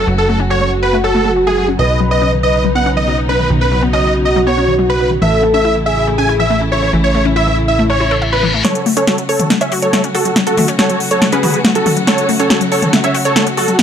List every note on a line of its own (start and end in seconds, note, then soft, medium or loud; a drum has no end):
0.00 1.75 C#3 medium
0.00 5.18 F#3 medium
0.00 1.75 A3 medium
0.00 1.75 F#4 medium
0.07 1.77 F#1 medium
0.07 0.11 F#3 loud
0.18 0.39 A4 medium
0.29 0.35 A3 medium
0.29 1.70 F#4 loud
0.40 0.42 C#4 medium
0.50 0.56 F#4 loud
0.50 0.71 C#5 loud
0.61 0.65 F#3 medium
0.82 0.96 B4 medium
0.93 0.97 A3 loud
1.04 1.10 C#4 loud
1.04 1.31 A4 loud
1.15 1.20 A3 loud
1.25 1.29 A3 medium
1.36 1.42 F#4 medium
1.47 1.49 A3 loud
1.47 1.67 G#4 medium
1.57 1.63 F#4 medium
1.68 1.70 C#4 medium
1.79 3.48 B1 medium
1.79 5.18 C#3 medium
1.79 1.83 D#3 loud
1.79 5.18 B3 medium
1.79 5.18 D#4 medium
1.79 2.35 B4 loud
1.79 1.99 D#5 loud
2.00 2.06 F#3 loud
2.11 2.13 B3 loud
2.11 2.31 D#5 loud
2.22 2.28 C#4 loud
2.32 2.36 D#3 medium
2.43 2.99 B4 loud
2.43 2.64 D#5 loud
2.65 2.68 F#3 loud
2.75 2.81 B3 loud
2.75 2.89 F#5 medium
2.86 2.92 C#4 loud
2.97 3.01 D#3 medium
2.97 3.17 D#5 medium
3.07 3.13 F#3 loud
3.18 3.22 B3 medium
3.29 3.31 C#4 medium
3.29 3.49 B4 medium
3.40 3.45 D#3 medium
3.50 5.20 B1 medium
3.50 3.54 D#3 loud
3.61 3.81 B4 medium
3.72 3.77 F#3 loud
3.72 5.13 F#4 loud
3.82 3.85 B3 loud
3.93 3.99 C#4 loud
3.93 4.14 D#5 medium
4.04 4.08 D#3 medium
4.25 4.39 D#5 medium
4.36 4.40 F#3 loud
4.47 4.52 B3 loud
4.47 4.74 C#5 loud
4.57 4.63 C#4 loud
4.68 4.72 D#3 medium
4.79 4.85 F#3 loud
4.90 4.93 B3 medium
4.90 5.10 B4 medium
5.00 5.03 C#4 medium
5.11 5.17 D#3 medium
5.22 6.91 A1 medium
5.22 8.61 C#3 medium
5.22 5.26 E3 loud
5.22 8.61 E3 medium
5.22 8.61 A3 medium
5.22 8.61 E4 medium
5.22 5.77 A4 loud
5.22 5.42 E5 loud
5.43 5.49 A3 loud
5.54 5.56 C#4 loud
5.54 5.74 E5 loud
5.65 5.70 E4 loud
5.75 5.79 E3 medium
5.86 6.42 G#4 loud
5.86 6.06 E5 loud
6.07 6.11 A3 loud
6.18 6.24 C#4 loud
6.18 6.32 G#5 medium
6.29 6.35 E4 loud
6.40 6.43 E3 medium
6.40 6.60 E5 medium
6.50 6.56 A3 loud
6.61 6.65 C#4 medium
6.72 6.74 E4 medium
6.72 6.92 C#5 medium
6.82 6.88 E3 medium
6.93 8.62 A1 medium
6.93 6.97 E3 loud
7.04 7.24 C#5 medium
7.15 7.20 A3 loud
7.15 8.56 E4 loud
7.25 7.28 C#4 loud
7.36 7.42 E4 loud
7.36 7.56 E5 loud
7.47 7.51 E3 medium
7.68 7.82 E5 medium
7.79 7.83 A3 loud
7.79 reverse cymbal medium
7.90 7.95 C#4 loud
7.90 8.17 C#5 loud
8.00 8.04 E4 loud
8.11 8.13 A4 loud
8.22 8.24 E5 loud
8.32 8.38 E4 medium
8.32 8.53 B4 medium
8.43 8.47 E3 loud
8.54 8.58 A3 medium
8.65 13.83 C#3 medium
8.65 8.68 F#3 loud
8.65 13.83 F#3 medium
8.65 13.83 A3 medium
8.65 13.83 F#4 medium
8.65 8.85 A4 medium
8.65 8.85 C#5 loud
8.65 snare soft
8.65 closed hi-hat medium
8.75 closed hi-hat medium
8.86 8.92 A3 loud
8.86 open hi-hat loud
8.97 8.99 C#4 loud
8.97 9.17 A4 medium
8.97 9.17 C#5 medium
8.97 closed hi-hat medium
9.07 9.13 F#4 loud
9.07 snare soft
9.07 closed hi-hat medium
9.18 9.22 F#3 medium
9.18 closed hi-hat medium
9.29 9.49 A4 medium
9.29 9.49 C#5 loud
9.29 9.49 C#5 medium
9.29 open hi-hat loud
9.40 closed hi-hat medium
9.40 mid tom medium
9.50 9.54 A3 loud
9.50 snare medium
9.50 closed hi-hat medium
9.61 9.67 C#4 loud
9.61 9.75 C#5 medium
9.61 9.75 E5 medium
9.61 closed hi-hat medium
9.72 9.78 F#4 loud
9.72 open hi-hat loud
9.82 9.86 F#3 medium
9.82 10.03 A4 medium
9.82 10.03 C#5 medium
9.82 10.03 C#5 loud
9.82 closed hi-hat medium
9.93 9.99 A3 loud
9.93 snare soft
9.93 closed hi-hat medium
10.04 10.08 C#4 medium
10.04 closed hi-hat medium
10.15 10.35 F#4 medium
10.15 10.17 F#4 medium
10.15 10.35 A4 loud
10.15 open hi-hat loud
10.25 10.31 F#3 medium
10.25 closed hi-hat medium
10.36 10.40 F#3 loud
10.36 snare medium
10.36 closed hi-hat medium
10.47 10.67 F#4 medium
10.47 10.67 A4 medium
10.47 closed hi-hat medium
10.57 10.63 A3 loud
10.57 open hi-hat loud
10.57 mid tom medium
10.68 10.71 C#4 loud
10.68 closed hi-hat medium
10.79 10.85 F#4 loud
10.79 10.99 A4 medium
10.79 10.99 C#5 medium
10.79 snare medium
10.79 closed hi-hat medium
10.90 10.93 F#3 medium
10.90 closed hi-hat medium
11.00 open hi-hat loud
11.11 11.25 A4 medium
11.11 11.25 C#5 medium
11.11 closed hi-hat medium
11.22 11.26 A3 loud
11.22 snare medium
11.22 closed hi-hat medium
11.32 11.38 C#4 loud
11.32 11.60 G#4 medium
11.32 11.60 B4 medium
11.32 11.60 B4 loud
11.32 closed hi-hat medium
11.43 11.49 F#4 loud
11.43 open hi-hat loud
11.43 mid tom medium
11.54 11.58 F#3 medium
11.54 closed hi-hat medium
11.65 11.70 A3 loud
11.65 snare medium
11.65 closed hi-hat medium
11.75 11.79 C#4 medium
11.75 11.96 F#4 medium
11.75 11.96 A4 loud
11.75 11.96 A4 medium
11.75 closed hi-hat medium
11.86 11.88 F#4 medium
11.86 open hi-hat loud
11.86 mid tom medium
11.97 12.03 F#3 medium
11.97 closed hi-hat medium
12.07 12.11 F#3 loud
12.07 12.28 A4 medium
12.07 12.28 C#5 loud
12.07 snare medium
12.07 closed hi-hat medium
12.18 closed hi-hat medium
12.29 12.35 A3 loud
12.29 open hi-hat loud
12.40 12.42 C#4 loud
12.40 12.60 A4 medium
12.40 12.60 C#5 medium
12.40 closed hi-hat medium
12.50 12.56 F#4 loud
12.50 snare medium
12.50 closed hi-hat medium
12.61 12.65 F#3 medium
12.61 closed hi-hat medium
12.72 12.92 A4 medium
12.72 12.92 C#5 medium
12.72 12.92 C#5 loud
12.72 open hi-hat loud
12.82 closed hi-hat medium
12.82 mid tom medium
12.93 12.97 A3 loud
12.93 snare medium
12.93 closed hi-hat medium
13.04 13.10 C#4 loud
13.04 13.18 C#5 medium
13.04 13.17 E5 medium
13.04 13.18 E5 medium
13.04 closed hi-hat medium
13.15 13.20 F#4 loud
13.15 open hi-hat loud
13.25 13.29 F#3 medium
13.25 13.46 A4 medium
13.25 13.46 C#5 medium
13.25 13.46 C#5 loud
13.25 closed hi-hat medium
13.36 13.42 A3 loud
13.36 snare medium
13.36 closed hi-hat medium
13.47 13.51 C#4 medium
13.47 closed hi-hat medium
13.57 13.60 F#4 medium
13.57 13.78 F#4 medium
13.57 13.78 A4 medium
13.57 13.78 A4 loud
13.57 open hi-hat loud
13.68 13.74 F#3 medium
13.68 closed hi-hat medium
13.79 13.83 F#3 loud
13.79 snare medium
13.79 closed hi-hat medium